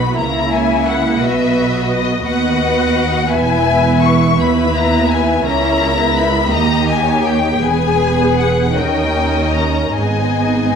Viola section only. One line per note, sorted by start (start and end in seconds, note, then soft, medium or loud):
0.00 0.14 B3 soft
0.00 0.14 D#4 soft
0.16 1.19 A#3 soft
0.16 1.19 E4 soft
1.21 2.24 B3 soft
1.21 2.24 F#4 soft
2.25 3.29 B3 soft
2.25 3.29 F#4 soft
3.32 4.37 B3 soft
3.32 4.37 E4 soft
4.38 5.44 B3 soft
4.38 5.44 E4 soft
5.46 5.99 C#4 soft
5.46 6.49 E4 soft
5.98 6.50 B3 soft
6.52 7.61 A#3 soft
6.52 7.61 D#4 soft
7.63 8.76 B3 soft
7.63 8.74 G#4 soft
8.76 9.94 C#4 soft
8.76 9.94 D#4 soft
9.96 10.76 B3 soft
9.96 10.76 D#4 soft